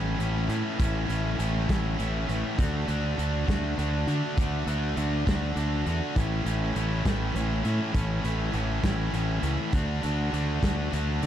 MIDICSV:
0, 0, Header, 1, 4, 480
1, 0, Start_track
1, 0, Key_signature, 3, "major"
1, 0, Tempo, 595829
1, 638, Time_signature, 6, 3, 24, 8
1, 9074, End_track
2, 0, Start_track
2, 0, Title_t, "Distorted electric guitar"
2, 0, Program_c, 0, 30
2, 0, Note_on_c, 0, 45, 78
2, 0, Note_on_c, 0, 52, 76
2, 0, Note_on_c, 0, 57, 77
2, 0, Note_on_c, 0, 61, 80
2, 0, Note_on_c, 0, 64, 75
2, 135, Note_off_c, 0, 45, 0
2, 145, Note_on_c, 0, 45, 70
2, 147, Note_off_c, 0, 52, 0
2, 153, Note_off_c, 0, 57, 0
2, 156, Note_on_c, 0, 52, 77
2, 156, Note_on_c, 0, 57, 76
2, 157, Note_off_c, 0, 64, 0
2, 160, Note_off_c, 0, 61, 0
2, 164, Note_on_c, 0, 61, 77
2, 167, Note_on_c, 0, 64, 77
2, 378, Note_off_c, 0, 45, 0
2, 385, Note_off_c, 0, 52, 0
2, 387, Note_on_c, 0, 45, 70
2, 394, Note_on_c, 0, 52, 70
2, 395, Note_off_c, 0, 57, 0
2, 397, Note_off_c, 0, 64, 0
2, 398, Note_on_c, 0, 57, 83
2, 402, Note_off_c, 0, 61, 0
2, 405, Note_on_c, 0, 61, 81
2, 406, Note_on_c, 0, 64, 77
2, 618, Note_off_c, 0, 45, 0
2, 622, Note_off_c, 0, 52, 0
2, 627, Note_on_c, 0, 45, 72
2, 632, Note_on_c, 0, 52, 82
2, 633, Note_off_c, 0, 57, 0
2, 635, Note_off_c, 0, 64, 0
2, 637, Note_on_c, 0, 57, 84
2, 640, Note_off_c, 0, 61, 0
2, 643, Note_on_c, 0, 61, 93
2, 645, Note_on_c, 0, 64, 92
2, 858, Note_off_c, 0, 45, 0
2, 866, Note_off_c, 0, 52, 0
2, 868, Note_on_c, 0, 45, 76
2, 876, Note_on_c, 0, 52, 80
2, 878, Note_off_c, 0, 57, 0
2, 880, Note_off_c, 0, 61, 0
2, 881, Note_off_c, 0, 64, 0
2, 882, Note_on_c, 0, 57, 77
2, 883, Note_on_c, 0, 61, 81
2, 891, Note_on_c, 0, 64, 78
2, 1100, Note_off_c, 0, 45, 0
2, 1106, Note_off_c, 0, 52, 0
2, 1110, Note_on_c, 0, 45, 84
2, 1115, Note_on_c, 0, 52, 75
2, 1118, Note_off_c, 0, 57, 0
2, 1119, Note_off_c, 0, 64, 0
2, 1122, Note_on_c, 0, 57, 85
2, 1124, Note_off_c, 0, 61, 0
2, 1127, Note_on_c, 0, 61, 88
2, 1128, Note_on_c, 0, 64, 89
2, 1342, Note_off_c, 0, 45, 0
2, 1346, Note_off_c, 0, 52, 0
2, 1352, Note_on_c, 0, 45, 77
2, 1356, Note_on_c, 0, 52, 74
2, 1358, Note_off_c, 0, 57, 0
2, 1362, Note_on_c, 0, 57, 76
2, 1364, Note_off_c, 0, 61, 0
2, 1365, Note_off_c, 0, 64, 0
2, 1367, Note_on_c, 0, 61, 77
2, 1374, Note_on_c, 0, 64, 76
2, 1577, Note_off_c, 0, 45, 0
2, 1583, Note_off_c, 0, 52, 0
2, 1587, Note_on_c, 0, 45, 74
2, 1592, Note_off_c, 0, 57, 0
2, 1593, Note_on_c, 0, 52, 76
2, 1595, Note_off_c, 0, 61, 0
2, 1595, Note_on_c, 0, 57, 75
2, 1596, Note_off_c, 0, 64, 0
2, 1598, Note_on_c, 0, 61, 75
2, 1606, Note_on_c, 0, 64, 83
2, 1817, Note_off_c, 0, 45, 0
2, 1823, Note_off_c, 0, 52, 0
2, 1827, Note_on_c, 0, 45, 70
2, 1833, Note_on_c, 0, 52, 73
2, 1834, Note_off_c, 0, 57, 0
2, 1835, Note_off_c, 0, 64, 0
2, 1837, Note_off_c, 0, 61, 0
2, 1837, Note_on_c, 0, 57, 79
2, 1840, Note_on_c, 0, 61, 83
2, 1845, Note_on_c, 0, 64, 88
2, 2060, Note_off_c, 0, 45, 0
2, 2063, Note_off_c, 0, 52, 0
2, 2069, Note_off_c, 0, 64, 0
2, 2077, Note_off_c, 0, 57, 0
2, 2077, Note_on_c, 0, 50, 73
2, 2078, Note_off_c, 0, 61, 0
2, 2080, Note_on_c, 0, 57, 87
2, 2081, Note_on_c, 0, 62, 86
2, 2088, Note_on_c, 0, 66, 85
2, 2307, Note_off_c, 0, 50, 0
2, 2310, Note_on_c, 0, 50, 73
2, 2314, Note_off_c, 0, 57, 0
2, 2318, Note_on_c, 0, 57, 72
2, 2319, Note_off_c, 0, 62, 0
2, 2320, Note_off_c, 0, 66, 0
2, 2322, Note_on_c, 0, 62, 80
2, 2323, Note_on_c, 0, 66, 75
2, 2550, Note_off_c, 0, 50, 0
2, 2553, Note_on_c, 0, 50, 69
2, 2557, Note_off_c, 0, 57, 0
2, 2558, Note_off_c, 0, 62, 0
2, 2560, Note_on_c, 0, 57, 72
2, 2561, Note_on_c, 0, 62, 83
2, 2563, Note_off_c, 0, 66, 0
2, 2567, Note_on_c, 0, 66, 92
2, 2783, Note_off_c, 0, 50, 0
2, 2792, Note_off_c, 0, 57, 0
2, 2793, Note_on_c, 0, 50, 69
2, 2795, Note_on_c, 0, 57, 72
2, 2796, Note_off_c, 0, 62, 0
2, 2805, Note_off_c, 0, 66, 0
2, 2805, Note_on_c, 0, 62, 79
2, 2809, Note_on_c, 0, 66, 84
2, 3019, Note_off_c, 0, 50, 0
2, 3028, Note_on_c, 0, 50, 75
2, 3035, Note_off_c, 0, 62, 0
2, 3038, Note_off_c, 0, 57, 0
2, 3041, Note_on_c, 0, 57, 71
2, 3044, Note_off_c, 0, 66, 0
2, 3045, Note_on_c, 0, 62, 81
2, 3048, Note_on_c, 0, 66, 86
2, 3264, Note_off_c, 0, 50, 0
2, 3273, Note_on_c, 0, 50, 75
2, 3276, Note_off_c, 0, 62, 0
2, 3282, Note_off_c, 0, 57, 0
2, 3285, Note_on_c, 0, 57, 74
2, 3286, Note_on_c, 0, 62, 81
2, 3289, Note_off_c, 0, 66, 0
2, 3292, Note_on_c, 0, 66, 84
2, 3500, Note_off_c, 0, 50, 0
2, 3510, Note_on_c, 0, 50, 77
2, 3513, Note_off_c, 0, 57, 0
2, 3515, Note_off_c, 0, 62, 0
2, 3516, Note_on_c, 0, 57, 85
2, 3522, Note_off_c, 0, 66, 0
2, 3525, Note_on_c, 0, 62, 87
2, 3525, Note_on_c, 0, 66, 85
2, 3744, Note_off_c, 0, 50, 0
2, 3753, Note_on_c, 0, 50, 74
2, 3755, Note_off_c, 0, 57, 0
2, 3758, Note_on_c, 0, 57, 77
2, 3759, Note_off_c, 0, 62, 0
2, 3766, Note_off_c, 0, 66, 0
2, 3769, Note_on_c, 0, 62, 86
2, 3769, Note_on_c, 0, 66, 87
2, 3991, Note_off_c, 0, 50, 0
2, 4000, Note_on_c, 0, 50, 82
2, 4001, Note_off_c, 0, 62, 0
2, 4002, Note_off_c, 0, 57, 0
2, 4005, Note_on_c, 0, 57, 72
2, 4011, Note_on_c, 0, 62, 77
2, 4013, Note_off_c, 0, 66, 0
2, 4017, Note_on_c, 0, 66, 84
2, 4229, Note_off_c, 0, 50, 0
2, 4235, Note_off_c, 0, 62, 0
2, 4238, Note_on_c, 0, 50, 69
2, 4240, Note_off_c, 0, 57, 0
2, 4243, Note_on_c, 0, 57, 84
2, 4245, Note_on_c, 0, 62, 82
2, 4253, Note_off_c, 0, 66, 0
2, 4256, Note_on_c, 0, 66, 84
2, 4468, Note_off_c, 0, 50, 0
2, 4477, Note_off_c, 0, 62, 0
2, 4478, Note_on_c, 0, 50, 71
2, 4479, Note_off_c, 0, 57, 0
2, 4482, Note_on_c, 0, 57, 71
2, 4486, Note_off_c, 0, 66, 0
2, 4487, Note_on_c, 0, 62, 83
2, 4489, Note_on_c, 0, 66, 83
2, 4712, Note_off_c, 0, 50, 0
2, 4722, Note_on_c, 0, 50, 68
2, 4725, Note_off_c, 0, 62, 0
2, 4726, Note_off_c, 0, 57, 0
2, 4729, Note_on_c, 0, 57, 74
2, 4735, Note_on_c, 0, 62, 78
2, 4737, Note_off_c, 0, 66, 0
2, 4740, Note_on_c, 0, 66, 79
2, 4948, Note_off_c, 0, 50, 0
2, 4955, Note_off_c, 0, 62, 0
2, 4956, Note_on_c, 0, 45, 82
2, 4961, Note_on_c, 0, 52, 75
2, 4963, Note_off_c, 0, 57, 0
2, 4966, Note_on_c, 0, 57, 79
2, 4970, Note_on_c, 0, 61, 78
2, 4972, Note_off_c, 0, 66, 0
2, 4976, Note_on_c, 0, 64, 88
2, 5190, Note_off_c, 0, 45, 0
2, 5193, Note_on_c, 0, 45, 72
2, 5199, Note_off_c, 0, 52, 0
2, 5202, Note_on_c, 0, 52, 76
2, 5204, Note_off_c, 0, 57, 0
2, 5204, Note_off_c, 0, 61, 0
2, 5207, Note_off_c, 0, 64, 0
2, 5207, Note_on_c, 0, 61, 80
2, 5208, Note_on_c, 0, 57, 75
2, 5210, Note_on_c, 0, 64, 78
2, 5435, Note_off_c, 0, 45, 0
2, 5438, Note_on_c, 0, 45, 72
2, 5441, Note_off_c, 0, 52, 0
2, 5444, Note_on_c, 0, 52, 77
2, 5447, Note_off_c, 0, 57, 0
2, 5450, Note_off_c, 0, 61, 0
2, 5450, Note_on_c, 0, 57, 77
2, 5453, Note_on_c, 0, 61, 84
2, 5457, Note_off_c, 0, 64, 0
2, 5460, Note_on_c, 0, 64, 88
2, 5658, Note_off_c, 0, 45, 0
2, 5665, Note_off_c, 0, 52, 0
2, 5668, Note_on_c, 0, 45, 74
2, 5674, Note_on_c, 0, 52, 79
2, 5678, Note_off_c, 0, 57, 0
2, 5680, Note_off_c, 0, 61, 0
2, 5681, Note_off_c, 0, 64, 0
2, 5681, Note_on_c, 0, 57, 85
2, 5684, Note_on_c, 0, 61, 79
2, 5691, Note_on_c, 0, 64, 79
2, 5904, Note_off_c, 0, 45, 0
2, 5913, Note_off_c, 0, 52, 0
2, 5914, Note_on_c, 0, 45, 73
2, 5922, Note_off_c, 0, 57, 0
2, 5923, Note_on_c, 0, 52, 76
2, 5926, Note_off_c, 0, 61, 0
2, 5926, Note_on_c, 0, 57, 86
2, 5928, Note_off_c, 0, 64, 0
2, 5929, Note_on_c, 0, 61, 83
2, 5937, Note_on_c, 0, 64, 80
2, 6138, Note_off_c, 0, 45, 0
2, 6142, Note_off_c, 0, 52, 0
2, 6147, Note_on_c, 0, 45, 70
2, 6151, Note_off_c, 0, 57, 0
2, 6152, Note_on_c, 0, 52, 70
2, 6154, Note_on_c, 0, 57, 74
2, 6157, Note_off_c, 0, 61, 0
2, 6158, Note_off_c, 0, 64, 0
2, 6160, Note_on_c, 0, 61, 82
2, 6167, Note_on_c, 0, 64, 85
2, 6374, Note_off_c, 0, 45, 0
2, 6382, Note_off_c, 0, 52, 0
2, 6384, Note_on_c, 0, 45, 84
2, 6392, Note_on_c, 0, 52, 90
2, 6393, Note_off_c, 0, 57, 0
2, 6396, Note_off_c, 0, 64, 0
2, 6396, Note_on_c, 0, 57, 86
2, 6400, Note_off_c, 0, 61, 0
2, 6403, Note_on_c, 0, 61, 93
2, 6405, Note_on_c, 0, 64, 86
2, 6624, Note_off_c, 0, 45, 0
2, 6633, Note_off_c, 0, 52, 0
2, 6634, Note_on_c, 0, 45, 78
2, 6640, Note_off_c, 0, 64, 0
2, 6642, Note_on_c, 0, 52, 72
2, 6643, Note_off_c, 0, 57, 0
2, 6646, Note_off_c, 0, 61, 0
2, 6646, Note_on_c, 0, 57, 82
2, 6649, Note_on_c, 0, 61, 75
2, 6650, Note_on_c, 0, 64, 85
2, 6859, Note_off_c, 0, 45, 0
2, 6863, Note_off_c, 0, 52, 0
2, 6868, Note_on_c, 0, 45, 73
2, 6873, Note_on_c, 0, 52, 79
2, 6874, Note_off_c, 0, 57, 0
2, 6877, Note_off_c, 0, 64, 0
2, 6877, Note_on_c, 0, 57, 90
2, 6880, Note_off_c, 0, 61, 0
2, 6883, Note_on_c, 0, 61, 83
2, 6887, Note_on_c, 0, 64, 85
2, 7098, Note_off_c, 0, 45, 0
2, 7101, Note_off_c, 0, 52, 0
2, 7108, Note_on_c, 0, 45, 70
2, 7111, Note_on_c, 0, 52, 74
2, 7114, Note_off_c, 0, 57, 0
2, 7116, Note_off_c, 0, 64, 0
2, 7117, Note_on_c, 0, 57, 76
2, 7121, Note_off_c, 0, 61, 0
2, 7124, Note_on_c, 0, 61, 79
2, 7126, Note_on_c, 0, 64, 82
2, 7338, Note_off_c, 0, 45, 0
2, 7346, Note_off_c, 0, 52, 0
2, 7348, Note_on_c, 0, 45, 76
2, 7356, Note_on_c, 0, 52, 76
2, 7357, Note_off_c, 0, 64, 0
2, 7358, Note_off_c, 0, 57, 0
2, 7362, Note_on_c, 0, 57, 74
2, 7365, Note_off_c, 0, 61, 0
2, 7367, Note_on_c, 0, 64, 87
2, 7368, Note_on_c, 0, 61, 77
2, 7576, Note_off_c, 0, 45, 0
2, 7580, Note_off_c, 0, 52, 0
2, 7585, Note_on_c, 0, 45, 81
2, 7590, Note_on_c, 0, 52, 72
2, 7593, Note_off_c, 0, 64, 0
2, 7594, Note_off_c, 0, 57, 0
2, 7596, Note_off_c, 0, 61, 0
2, 7597, Note_on_c, 0, 57, 71
2, 7599, Note_on_c, 0, 61, 75
2, 7603, Note_on_c, 0, 64, 77
2, 7818, Note_off_c, 0, 45, 0
2, 7820, Note_off_c, 0, 52, 0
2, 7827, Note_off_c, 0, 64, 0
2, 7832, Note_on_c, 0, 50, 89
2, 7834, Note_off_c, 0, 57, 0
2, 7837, Note_on_c, 0, 57, 77
2, 7842, Note_off_c, 0, 61, 0
2, 7845, Note_on_c, 0, 62, 97
2, 7850, Note_on_c, 0, 66, 82
2, 8066, Note_off_c, 0, 50, 0
2, 8069, Note_on_c, 0, 50, 73
2, 8075, Note_off_c, 0, 57, 0
2, 8078, Note_on_c, 0, 57, 76
2, 8080, Note_off_c, 0, 62, 0
2, 8083, Note_off_c, 0, 66, 0
2, 8083, Note_on_c, 0, 62, 75
2, 8086, Note_on_c, 0, 66, 88
2, 8306, Note_off_c, 0, 50, 0
2, 8309, Note_on_c, 0, 50, 73
2, 8312, Note_off_c, 0, 57, 0
2, 8315, Note_on_c, 0, 57, 85
2, 8317, Note_off_c, 0, 62, 0
2, 8320, Note_off_c, 0, 66, 0
2, 8320, Note_on_c, 0, 62, 84
2, 8323, Note_on_c, 0, 66, 87
2, 8547, Note_off_c, 0, 50, 0
2, 8557, Note_on_c, 0, 50, 75
2, 8558, Note_off_c, 0, 62, 0
2, 8561, Note_off_c, 0, 57, 0
2, 8564, Note_on_c, 0, 57, 77
2, 8567, Note_off_c, 0, 66, 0
2, 8567, Note_on_c, 0, 62, 74
2, 8570, Note_on_c, 0, 66, 83
2, 8780, Note_off_c, 0, 50, 0
2, 8790, Note_on_c, 0, 50, 83
2, 8791, Note_off_c, 0, 62, 0
2, 8794, Note_off_c, 0, 57, 0
2, 8797, Note_on_c, 0, 57, 80
2, 8801, Note_on_c, 0, 62, 90
2, 8803, Note_off_c, 0, 66, 0
2, 8806, Note_on_c, 0, 66, 79
2, 9023, Note_off_c, 0, 50, 0
2, 9033, Note_on_c, 0, 50, 74
2, 9035, Note_off_c, 0, 62, 0
2, 9040, Note_off_c, 0, 57, 0
2, 9044, Note_on_c, 0, 57, 80
2, 9045, Note_off_c, 0, 66, 0
2, 9045, Note_on_c, 0, 62, 80
2, 9048, Note_on_c, 0, 66, 88
2, 9074, Note_off_c, 0, 50, 0
2, 9074, Note_off_c, 0, 57, 0
2, 9074, Note_off_c, 0, 62, 0
2, 9074, Note_off_c, 0, 66, 0
2, 9074, End_track
3, 0, Start_track
3, 0, Title_t, "Fingered electric bass"
3, 0, Program_c, 1, 33
3, 0, Note_on_c, 1, 33, 94
3, 133, Note_off_c, 1, 33, 0
3, 154, Note_on_c, 1, 33, 81
3, 373, Note_off_c, 1, 33, 0
3, 390, Note_on_c, 1, 45, 78
3, 502, Note_off_c, 1, 45, 0
3, 643, Note_on_c, 1, 33, 94
3, 859, Note_off_c, 1, 33, 0
3, 873, Note_on_c, 1, 33, 76
3, 1093, Note_off_c, 1, 33, 0
3, 1118, Note_on_c, 1, 33, 79
3, 1337, Note_off_c, 1, 33, 0
3, 1368, Note_on_c, 1, 33, 92
3, 1582, Note_off_c, 1, 33, 0
3, 1606, Note_on_c, 1, 33, 82
3, 1821, Note_off_c, 1, 33, 0
3, 1846, Note_on_c, 1, 33, 78
3, 1953, Note_off_c, 1, 33, 0
3, 2084, Note_on_c, 1, 38, 94
3, 2300, Note_off_c, 1, 38, 0
3, 2321, Note_on_c, 1, 38, 83
3, 2539, Note_off_c, 1, 38, 0
3, 2563, Note_on_c, 1, 38, 78
3, 2780, Note_off_c, 1, 38, 0
3, 2804, Note_on_c, 1, 38, 88
3, 3021, Note_off_c, 1, 38, 0
3, 3042, Note_on_c, 1, 38, 88
3, 3260, Note_off_c, 1, 38, 0
3, 3281, Note_on_c, 1, 50, 74
3, 3390, Note_off_c, 1, 50, 0
3, 3522, Note_on_c, 1, 38, 98
3, 3740, Note_off_c, 1, 38, 0
3, 3758, Note_on_c, 1, 38, 85
3, 3977, Note_off_c, 1, 38, 0
3, 4004, Note_on_c, 1, 38, 83
3, 4221, Note_off_c, 1, 38, 0
3, 4248, Note_on_c, 1, 38, 86
3, 4463, Note_off_c, 1, 38, 0
3, 4476, Note_on_c, 1, 38, 75
3, 4696, Note_off_c, 1, 38, 0
3, 4724, Note_on_c, 1, 40, 76
3, 4832, Note_off_c, 1, 40, 0
3, 4963, Note_on_c, 1, 33, 89
3, 5180, Note_off_c, 1, 33, 0
3, 5193, Note_on_c, 1, 33, 75
3, 5414, Note_off_c, 1, 33, 0
3, 5436, Note_on_c, 1, 33, 77
3, 5656, Note_off_c, 1, 33, 0
3, 5684, Note_on_c, 1, 33, 95
3, 5901, Note_off_c, 1, 33, 0
3, 5916, Note_on_c, 1, 33, 84
3, 6136, Note_off_c, 1, 33, 0
3, 6163, Note_on_c, 1, 45, 79
3, 6271, Note_off_c, 1, 45, 0
3, 6400, Note_on_c, 1, 33, 96
3, 6618, Note_off_c, 1, 33, 0
3, 6638, Note_on_c, 1, 33, 80
3, 6857, Note_off_c, 1, 33, 0
3, 6878, Note_on_c, 1, 33, 86
3, 7097, Note_off_c, 1, 33, 0
3, 7119, Note_on_c, 1, 33, 92
3, 7337, Note_off_c, 1, 33, 0
3, 7357, Note_on_c, 1, 33, 80
3, 7576, Note_off_c, 1, 33, 0
3, 7594, Note_on_c, 1, 37, 77
3, 7705, Note_off_c, 1, 37, 0
3, 7839, Note_on_c, 1, 38, 95
3, 8056, Note_off_c, 1, 38, 0
3, 8087, Note_on_c, 1, 38, 82
3, 8300, Note_off_c, 1, 38, 0
3, 8322, Note_on_c, 1, 38, 87
3, 8537, Note_off_c, 1, 38, 0
3, 8560, Note_on_c, 1, 38, 91
3, 8777, Note_off_c, 1, 38, 0
3, 8802, Note_on_c, 1, 38, 87
3, 9017, Note_off_c, 1, 38, 0
3, 9045, Note_on_c, 1, 50, 81
3, 9074, Note_off_c, 1, 50, 0
3, 9074, End_track
4, 0, Start_track
4, 0, Title_t, "Drums"
4, 162, Note_on_c, 9, 42, 55
4, 243, Note_off_c, 9, 42, 0
4, 399, Note_on_c, 9, 42, 57
4, 479, Note_off_c, 9, 42, 0
4, 641, Note_on_c, 9, 36, 94
4, 641, Note_on_c, 9, 42, 77
4, 722, Note_off_c, 9, 36, 0
4, 722, Note_off_c, 9, 42, 0
4, 883, Note_on_c, 9, 42, 59
4, 964, Note_off_c, 9, 42, 0
4, 1125, Note_on_c, 9, 42, 61
4, 1205, Note_off_c, 9, 42, 0
4, 1363, Note_on_c, 9, 36, 68
4, 1365, Note_on_c, 9, 42, 78
4, 1370, Note_on_c, 9, 38, 97
4, 1444, Note_off_c, 9, 36, 0
4, 1445, Note_off_c, 9, 42, 0
4, 1451, Note_off_c, 9, 38, 0
4, 1607, Note_on_c, 9, 42, 56
4, 1687, Note_off_c, 9, 42, 0
4, 1847, Note_on_c, 9, 42, 52
4, 1928, Note_off_c, 9, 42, 0
4, 2084, Note_on_c, 9, 36, 96
4, 2086, Note_on_c, 9, 42, 76
4, 2164, Note_off_c, 9, 36, 0
4, 2166, Note_off_c, 9, 42, 0
4, 2322, Note_on_c, 9, 42, 57
4, 2403, Note_off_c, 9, 42, 0
4, 2571, Note_on_c, 9, 42, 57
4, 2651, Note_off_c, 9, 42, 0
4, 2807, Note_on_c, 9, 36, 71
4, 2812, Note_on_c, 9, 42, 68
4, 2818, Note_on_c, 9, 38, 96
4, 2888, Note_off_c, 9, 36, 0
4, 2892, Note_off_c, 9, 42, 0
4, 2898, Note_off_c, 9, 38, 0
4, 3051, Note_on_c, 9, 42, 52
4, 3131, Note_off_c, 9, 42, 0
4, 3286, Note_on_c, 9, 42, 54
4, 3367, Note_off_c, 9, 42, 0
4, 3525, Note_on_c, 9, 36, 98
4, 3527, Note_on_c, 9, 42, 70
4, 3606, Note_off_c, 9, 36, 0
4, 3607, Note_off_c, 9, 42, 0
4, 3766, Note_on_c, 9, 42, 59
4, 3847, Note_off_c, 9, 42, 0
4, 4004, Note_on_c, 9, 42, 58
4, 4085, Note_off_c, 9, 42, 0
4, 4246, Note_on_c, 9, 36, 71
4, 4253, Note_on_c, 9, 42, 75
4, 4259, Note_on_c, 9, 38, 96
4, 4327, Note_off_c, 9, 36, 0
4, 4334, Note_off_c, 9, 42, 0
4, 4340, Note_off_c, 9, 38, 0
4, 4485, Note_on_c, 9, 42, 57
4, 4566, Note_off_c, 9, 42, 0
4, 4725, Note_on_c, 9, 42, 55
4, 4806, Note_off_c, 9, 42, 0
4, 4965, Note_on_c, 9, 36, 94
4, 4965, Note_on_c, 9, 42, 79
4, 5045, Note_off_c, 9, 36, 0
4, 5046, Note_off_c, 9, 42, 0
4, 5207, Note_on_c, 9, 42, 65
4, 5288, Note_off_c, 9, 42, 0
4, 5445, Note_on_c, 9, 42, 60
4, 5526, Note_off_c, 9, 42, 0
4, 5683, Note_on_c, 9, 36, 75
4, 5684, Note_on_c, 9, 42, 79
4, 5689, Note_on_c, 9, 38, 95
4, 5764, Note_off_c, 9, 36, 0
4, 5764, Note_off_c, 9, 42, 0
4, 5770, Note_off_c, 9, 38, 0
4, 5927, Note_on_c, 9, 42, 56
4, 6007, Note_off_c, 9, 42, 0
4, 6161, Note_on_c, 9, 42, 54
4, 6242, Note_off_c, 9, 42, 0
4, 6401, Note_on_c, 9, 36, 92
4, 6401, Note_on_c, 9, 42, 75
4, 6481, Note_off_c, 9, 36, 0
4, 6482, Note_off_c, 9, 42, 0
4, 6642, Note_on_c, 9, 42, 59
4, 6723, Note_off_c, 9, 42, 0
4, 6874, Note_on_c, 9, 42, 54
4, 6955, Note_off_c, 9, 42, 0
4, 7117, Note_on_c, 9, 42, 75
4, 7118, Note_on_c, 9, 36, 70
4, 7122, Note_on_c, 9, 38, 99
4, 7197, Note_off_c, 9, 42, 0
4, 7199, Note_off_c, 9, 36, 0
4, 7203, Note_off_c, 9, 38, 0
4, 7360, Note_on_c, 9, 42, 55
4, 7441, Note_off_c, 9, 42, 0
4, 7598, Note_on_c, 9, 42, 57
4, 7678, Note_off_c, 9, 42, 0
4, 7835, Note_on_c, 9, 42, 75
4, 7839, Note_on_c, 9, 36, 92
4, 7915, Note_off_c, 9, 42, 0
4, 7920, Note_off_c, 9, 36, 0
4, 8082, Note_on_c, 9, 42, 60
4, 8163, Note_off_c, 9, 42, 0
4, 8328, Note_on_c, 9, 42, 55
4, 8409, Note_off_c, 9, 42, 0
4, 8561, Note_on_c, 9, 36, 72
4, 8564, Note_on_c, 9, 42, 74
4, 8570, Note_on_c, 9, 38, 98
4, 8642, Note_off_c, 9, 36, 0
4, 8645, Note_off_c, 9, 42, 0
4, 8651, Note_off_c, 9, 38, 0
4, 8808, Note_on_c, 9, 42, 60
4, 8888, Note_off_c, 9, 42, 0
4, 9044, Note_on_c, 9, 42, 60
4, 9074, Note_off_c, 9, 42, 0
4, 9074, End_track
0, 0, End_of_file